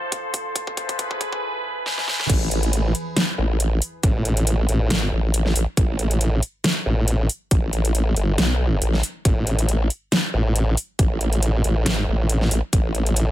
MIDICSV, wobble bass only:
0, 0, Header, 1, 2, 480
1, 0, Start_track
1, 0, Tempo, 434783
1, 614, Time_signature, 4, 2, 24, 8
1, 14698, End_track
2, 0, Start_track
2, 0, Title_t, "Wobble bass"
2, 0, Program_c, 0, 39
2, 2534, Note_on_c, 0, 33, 97
2, 3236, Note_off_c, 0, 33, 0
2, 3734, Note_on_c, 0, 33, 101
2, 4196, Note_off_c, 0, 33, 0
2, 4454, Note_on_c, 0, 33, 99
2, 5156, Note_off_c, 0, 33, 0
2, 5173, Note_on_c, 0, 33, 98
2, 5636, Note_off_c, 0, 33, 0
2, 5653, Note_on_c, 0, 33, 98
2, 6116, Note_off_c, 0, 33, 0
2, 6133, Note_on_c, 0, 33, 97
2, 6242, Note_off_c, 0, 33, 0
2, 6374, Note_on_c, 0, 33, 98
2, 7076, Note_off_c, 0, 33, 0
2, 7573, Note_on_c, 0, 33, 96
2, 8036, Note_off_c, 0, 33, 0
2, 8294, Note_on_c, 0, 33, 96
2, 8996, Note_off_c, 0, 33, 0
2, 9014, Note_on_c, 0, 31, 98
2, 9236, Note_off_c, 0, 31, 0
2, 9254, Note_on_c, 0, 35, 94
2, 9716, Note_off_c, 0, 35, 0
2, 9734, Note_on_c, 0, 33, 91
2, 9956, Note_off_c, 0, 33, 0
2, 10213, Note_on_c, 0, 33, 96
2, 10916, Note_off_c, 0, 33, 0
2, 11413, Note_on_c, 0, 33, 104
2, 11876, Note_off_c, 0, 33, 0
2, 12133, Note_on_c, 0, 33, 95
2, 12836, Note_off_c, 0, 33, 0
2, 12853, Note_on_c, 0, 33, 98
2, 13316, Note_off_c, 0, 33, 0
2, 13333, Note_on_c, 0, 33, 96
2, 13796, Note_off_c, 0, 33, 0
2, 13813, Note_on_c, 0, 33, 98
2, 13923, Note_off_c, 0, 33, 0
2, 14053, Note_on_c, 0, 33, 94
2, 14698, Note_off_c, 0, 33, 0
2, 14698, End_track
0, 0, End_of_file